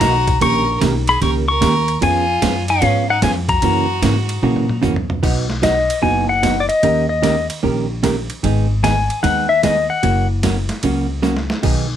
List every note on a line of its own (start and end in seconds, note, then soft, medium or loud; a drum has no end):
0.00 0.40 B1 medium
0.00 0.13 F#3 medium
0.00 0.13 A#3 medium
0.00 0.13 D#4 medium
0.00 0.37 F#4 medium
0.00 0.13 F#4 medium
0.00 0.42 A#5 loud
0.00 kick soft
0.00 snare medium
0.00 hi-hat pedal medium
0.00 ride medium
0.27 kick medium
0.27 ride medium
0.41 0.80 A#1 medium
0.41 0.64 D#3 medium
0.41 0.64 A#3 medium
0.41 0.64 C#4 medium
0.41 0.64 G4 medium
0.41 0.64 A#4 medium
0.41 0.79 A#4 medium
0.41 0.79 C#6 loud
0.41 kick soft
0.41 ride medium
0.81 1.21 B1 medium
0.81 0.93 D#3 medium
0.81 0.94 A#3 medium
0.81 0.93 C#4 medium
0.81 0.94 G4 medium
0.81 0.94 A#4 medium
0.81 kick soft
0.81 snare medium
0.81 hi-hat pedal medium
0.81 ride medium
1.07 1.21 G#4 medium
1.07 1.21 B5 loud
1.07 ride medium
1.21 1.61 C#2 medium
1.21 1.44 D#3 medium
1.21 1.44 A#3 medium
1.21 1.44 C#4 medium
1.21 1.44 G4 medium
1.21 1.34 A#4 medium
1.21 1.45 A#4 medium
1.21 1.30 C#6 loud
1.21 kick soft
1.21 ride medium
1.48 1.99 A#4 medium
1.48 1.98 C#6 loud
1.61 2.01 D#2 loud
1.61 1.73 D#3 medium
1.61 1.73 A#3 medium
1.61 1.73 C#4 medium
1.61 1.73 G4 medium
1.61 1.74 A#4 medium
1.61 kick soft
1.61 snare medium
1.61 hi-hat pedal medium
1.61 ride medium
1.88 ride soft
2.01 2.41 F2 medium
2.01 2.24 F3 medium
2.01 2.24 B3 medium
2.01 2.24 C#4 medium
2.01 2.65 F4 medium
2.01 2.24 G#4 medium
2.01 2.71 G#5 loud
2.01 kick soft
2.01 ride medium
2.42 2.81 F#2 medium
2.42 2.54 F3 medium
2.42 2.54 B3 medium
2.42 2.54 C#4 medium
2.42 2.54 G#4 medium
2.42 kick soft
2.42 snare medium
2.42 hi-hat pedal medium
2.42 ride medium
2.68 3.06 C#4 medium
2.68 3.06 F5 loud
2.68 ride medium
2.82 3.21 G#2 medium
2.82 3.04 F3 medium
2.82 3.04 B3 medium
2.82 3.04 C#4 medium
2.82 3.04 G#4 medium
2.82 kick soft
2.82 ride medium
3.09 3.21 D#4 medium
3.09 3.22 F#5 medium
3.22 3.61 F2 loud
3.22 3.34 F3 medium
3.22 3.34 B3 medium
3.22 3.34 C#4 medium
3.22 3.34 F4 medium
3.22 3.34 G#4 medium
3.22 3.31 G#5 medium
3.22 kick soft
3.22 snare medium
3.22 hi-hat pedal medium
3.22 ride medium
3.48 4.78 F#4 medium
3.48 4.79 A#5 medium
3.48 kick medium
3.48 ride medium
3.62 4.01 F#2 medium
3.62 3.85 C#3 medium
3.62 3.85 E3 medium
3.62 3.85 A#3 medium
3.62 3.85 C#4 medium
3.62 3.85 F#4 medium
3.62 kick soft
3.62 ride medium
4.02 4.41 G#2 medium
4.02 4.14 C#3 medium
4.02 4.14 E3 medium
4.02 4.14 A#3 medium
4.02 4.15 C#4 medium
4.02 4.15 F#4 medium
4.02 kick soft
4.02 snare medium
4.02 hi-hat pedal medium
4.02 ride medium
4.29 ride medium
4.42 4.81 A#2 medium
4.42 4.65 C#3 medium
4.42 4.65 E3 medium
4.42 4.65 A#3 medium
4.42 4.65 C#4 medium
4.42 4.65 F#4 medium
4.42 mid tom medium
4.56 mid tom medium
4.69 mid tom medium
4.82 5.21 F#2 medium
4.82 4.94 C#3 medium
4.82 4.94 E3 medium
4.82 4.94 A#3 medium
4.82 4.94 C#4 medium
4.82 4.95 F#4 medium
4.82 floor tom medium
4.82 hi-hat pedal medium
4.96 floor tom medium
5.10 floor tom loud
5.23 5.87 B1 loud
5.23 5.45 B2 medium
5.23 5.45 F#3 medium
5.23 5.45 B3 medium
5.23 5.45 D#4 medium
5.23 5.45 F#4 medium
5.23 kick medium
5.23 crash medium
5.50 snare medium
5.62 5.74 B2 medium
5.62 5.74 F#3 medium
5.62 5.74 B3 medium
5.62 5.75 D#4 medium
5.62 5.75 F#4 medium
5.62 6.04 D#5 medium
5.62 kick soft
5.62 snare medium
5.62 hi-hat pedal medium
5.62 ride medium
5.90 ride medium
6.02 6.67 F#1 medium
6.02 6.25 B2 medium
6.02 6.25 F#3 medium
6.02 6.25 B3 medium
6.02 6.25 D#4 medium
6.02 6.25 F#4 medium
6.02 6.27 G#5 loud
6.02 kick soft
6.29 6.61 F#5 loud
6.43 6.55 B2 medium
6.43 6.55 F#3 medium
6.43 6.55 B3 medium
6.43 6.55 D#4 medium
6.43 6.55 F#4 medium
6.43 kick soft
6.43 snare medium
6.43 hi-hat pedal medium
6.43 ride medium
6.60 6.68 D5 medium
6.69 ride medium
6.83 7.47 D#2 medium
6.83 7.05 D#3 medium
6.83 7.05 A#3 medium
6.83 7.05 C#4 medium
6.83 7.05 G4 medium
6.83 7.06 A#4 medium
6.83 kick soft
6.83 ride medium
7.09 7.46 D#5 medium
7.22 7.34 D#3 medium
7.22 7.35 A#3 medium
7.22 7.35 C#4 medium
7.22 7.35 G4 medium
7.22 7.35 A#4 medium
7.22 kick soft
7.22 snare medium
7.22 hi-hat pedal medium
7.22 ride medium
7.50 ride medium
7.63 8.28 A#1 medium
7.63 7.85 D#3 medium
7.63 7.85 A#3 medium
7.63 7.85 C#4 medium
7.63 7.85 G4 medium
7.63 7.86 A#4 medium
7.63 kick soft
8.03 8.15 D#3 medium
8.03 8.15 A#3 medium
8.03 8.15 C#4 medium
8.03 8.15 G4 medium
8.03 8.15 A#4 medium
8.03 kick soft
8.03 snare medium
8.03 hi-hat pedal medium
8.03 ride medium
8.30 ride medium
8.43 9.07 G#1 loud
8.43 8.65 D#3 medium
8.43 8.66 G#3 medium
8.43 8.66 B3 medium
8.43 8.66 D#4 medium
8.43 8.66 G#4 medium
8.43 kick soft
8.43 ride medium
8.83 8.95 D#3 medium
8.83 8.95 G#3 medium
8.83 8.95 B3 medium
8.83 8.95 D#4 medium
8.83 8.95 G#4 medium
8.83 9.23 G#5 loud
8.83 kick soft
8.83 snare medium
8.83 hi-hat pedal medium
8.83 ride medium
9.10 ride soft
9.23 9.88 D#2 medium
9.23 9.45 D#3 medium
9.23 9.45 G#3 medium
9.23 9.46 B3 medium
9.23 9.46 D#4 medium
9.23 9.46 G#4 medium
9.23 9.47 F#5 loud
9.23 kick soft
9.23 ride medium
9.49 9.63 E5 medium
9.63 9.75 D#3 medium
9.63 9.75 G#3 medium
9.63 9.75 B3 medium
9.63 9.75 D#4 medium
9.63 9.75 G#4 medium
9.63 9.91 D#5 medium
9.63 kick soft
9.63 snare medium
9.63 hi-hat pedal medium
9.63 ride medium
9.90 10.27 F#5 medium
10.03 10.67 F#1 loud
10.03 10.25 C#3 medium
10.03 10.25 F#3 medium
10.03 10.26 A#3 medium
10.03 10.26 C#4 medium
10.03 10.26 F#4 medium
10.03 kick soft
10.03 ride medium
10.43 10.55 C#3 medium
10.43 10.55 F#3 medium
10.43 10.55 A#3 medium
10.43 10.56 C#4 medium
10.43 10.56 F#4 medium
10.43 kick soft
10.43 snare medium
10.43 hi-hat pedal medium
10.43 ride medium
10.69 snare medium
10.69 ride medium
10.83 11.47 C#2 medium
10.83 11.06 C#3 medium
10.83 11.06 F#3 medium
10.83 11.06 A#3 medium
10.83 11.06 C#4 medium
10.83 11.06 F#4 medium
10.83 kick soft
10.83 ride medium
11.22 11.35 C#3 medium
11.22 11.35 F#3 medium
11.22 11.35 A#3 medium
11.22 11.35 C#4 medium
11.22 11.35 F#4 medium
11.22 snare medium
11.22 hi-hat pedal medium
11.37 snare medium
11.50 snare medium
11.63 11.97 B1 medium
11.63 11.85 B2 medium
11.63 11.85 D#3 medium
11.63 11.85 F#3 medium
11.63 11.86 B3 medium
11.63 11.86 D#4 medium
11.63 11.86 G#4 medium
11.63 kick medium
11.63 crash medium